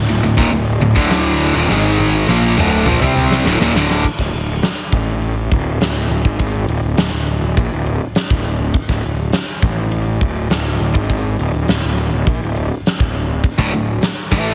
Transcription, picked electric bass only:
0.08 D1
0.22 D1
0.38 D#1
0.52 D1
0.81 D1
0.96 D1
1.54 D#1
1.70 G#1
2.29 A#1
2.58 D1
2.87 A#1
3.01 C2
3.45 D1
3.59 D#1
3.74 D1
4.19 D1
4.33 D1
4.92 A1
5.52 D1
5.81 D1
6.09 D1
6.25 G#1
6.68 D1
6.83 D1
6.97 D1
7.12 D1
7.42 D1
7.57 A#1
7.72 D1
8.30 D1
8.89 D1
9.03 D1
9.63 A1
10.21 D1
10.50 D1
10.79 D1
10.95 G#1
11.39 D1
11.54 D1
11.68 D1
11.83 D1
12.12 D1
12.27 A#1
12.42 D1
13.00 D1
13.58 D1
13.73 D1
14.32 A1

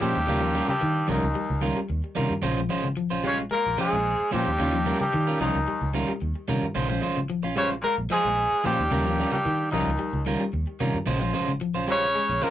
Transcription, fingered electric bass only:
0.02 A#2
0.16 D#2
0.28 D#2
0.69 muted fingered electric bass stroke
0.82 D#3
1.09 C#2
1.23 C#2
1.50 C#2
1.90 D#2
2.17 C3
2.30 G2
2.43 A#1
2.70 G#1
3.12 A#1
3.66 A#1
3.93 A#1
4.34 A#2
4.47 D#2
4.60 D#2
5.01 muted fingered electric bass stroke
5.14 D#3
5.40 C#2
5.54 C#2
5.81 C#2
6.22 D#2
6.49 C3
6.63 G2
6.76 A#1
7.03 G#1
7.44 A#1
7.98 A#1
8.25 A#1
8.65 A#2
8.79 D#2
8.92 D#2
9.33 muted fingered electric bass stroke
9.46 D#3
9.73 C#2
9.86 C#2
10.13 C#2
10.53 D#2
10.81 C3
10.94 G2
11.08 A#1
11.35 G#1
11.76 A#1
12.29 A#1

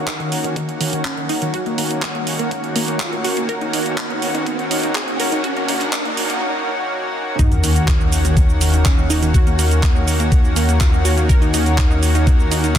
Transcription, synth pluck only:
0.07 D#3
0.20 D#3
0.44 D#3
0.56 D#3
0.81 D#3
0.93 D#3
1.05 C#4
1.17 D#3
1.29 D#4
1.42 D#3
1.54 F#4
1.66 A#3
1.78 A#3
2.03 A#3
2.15 A#3
2.39 A#3
2.51 A#3
2.76 A#3
2.88 A#3
3.00 F4
3.13 A#3
3.25 F#4
3.37 A#3
3.49 A#4
3.61 D#4
3.73 D#4
3.98 D#4
4.10 D#4
4.34 D#4
4.46 D#4
4.71 D#4
4.83 D#4
4.95 G#4
5.08 D#4
5.20 A#4
5.32 D#4
5.44 F#4
5.56 A#3
5.68 A#3
5.93 A#3
6.05 A#3
6.30 A#3
7.39 D#4
7.52 D#3
7.64 D#3
7.88 D#3
8.00 D#3
8.25 D#3
8.37 D#3
8.61 D#3
8.74 D#3
8.86 C#4
8.98 D#3
9.10 D#4
9.22 D#3
9.34 F#4
9.47 A#3
9.59 A#3
9.83 A#3
9.96 A#3
10.20 A#3
10.32 A#3
10.56 A#3
10.69 A#3
10.81 F4
10.93 A#3
11.05 F#4
11.17 A#3
11.29 A#4
11.42 D#4
11.54 D#4
11.78 D#4
11.90 D#4
12.15 D#4
12.27 D#4
12.51 D#4
12.64 D#4

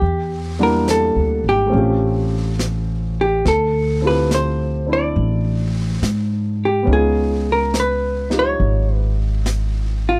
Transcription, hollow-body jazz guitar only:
Already playing: G4
0.63 A#4
0.91 A4
1.49 G4
3.21 G4
3.48 A4
4.07 B4
4.35 C5
4.93 D5
6.65 G4
6.93 G#4
7.52 A#4
7.80 B4
8.39 C#5
8.95 B4
10.09 F4

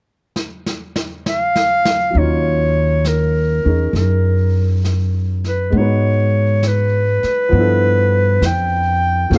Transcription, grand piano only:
2.10 F#3 C#4
2.16 D#4 F4
2.21 C#5
3.65 C#4 D#4 G#4
5.70 G#3 B3
5.76 D#4 F#4
5.81 B4
7.49 F3 B3
7.54 D4 E4
7.60 A4
9.30 F3 F#3 A#3 C#4
9.34 G#4

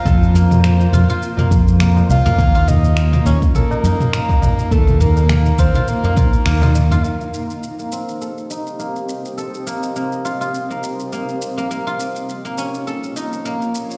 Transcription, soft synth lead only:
Already playing: F5
2.10 F5
2.68 D#5
3.26 C#5
3.56 A#4
4.72 A4
5.01 A#4
5.59 C5
5.89 A#4

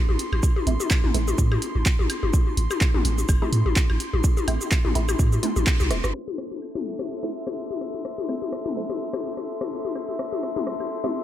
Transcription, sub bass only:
0.09 A1
0.32 A1
0.67 A1
1.04 A1
1.14 A1
1.38 A2
1.75 A1
1.99 A1
2.23 G1
2.57 A1
2.94 A1
3.05 A1
3.29 G1
3.52 A2
3.66 A1
3.90 A1
4.13 A1
4.48 A1
4.85 A1
4.95 A1
5.19 A2
5.56 A1
5.80 C2
5.91 E1
6.04 G1

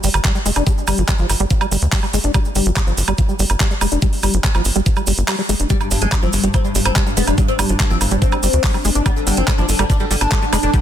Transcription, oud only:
5.70 G3
5.81 G2
5.91 G2
6.02 G#3
6.12 G2
6.23 C4
6.33 G2
6.44 G2
6.54 C4
6.65 G2
6.75 G2
6.85 C4
7.06 G2
7.17 B3
7.27 G2
7.38 G2
7.48 C4
7.59 G2
7.69 G2
7.80 G2
7.90 C4
8.01 G2
8.11 G2
8.22 C4
9.06 B3
9.16 D3
9.27 D3
9.37 C4
9.58 D4
9.69 D3
9.79 D3
9.90 D4
10.00 D3
10.11 D3
10.21 D4
10.32 D3
10.42 D3
10.53 D4
10.63 D3

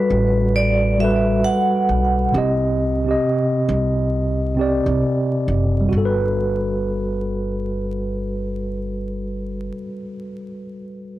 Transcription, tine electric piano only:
Already playing: G3 F#4 A4 B4
0.98 G3 F#4
1.02 A4 B4
2.32 C3 C4
2.36 G4 D#5
3.04 C3 C4
3.08 G4 D#5
4.55 C3 C4
4.59 G4 D5
5.81 G3
5.89 F#4
5.97 A4
6.05 B4

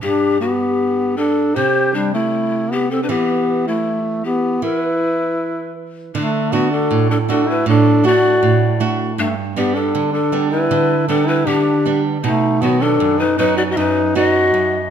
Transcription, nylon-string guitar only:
0.03 G2
1.56 C3
3.09 E3
4.62 E3
6.15 D3
6.52 A3 D4 F#4
6.91 A2
7.28 A3 D4 F#4
7.66 A2
8.04 A3 D4 F#4
8.43 A2
8.80 A3 D4 F#4
9.18 G2
9.56 G3 B3 D4
9.95 D3
10.32 G3 B3 D4
10.71 D3
11.08 G3 B3 D4
11.47 D3
11.85 G3 B3 D4
12.24 B2
12.62 D#3 F#3 B3
13.00 F#2
13.39 F#3 B3 D#4
13.77 F#2
14.15 F#3 B3 D#4
14.54 F#2

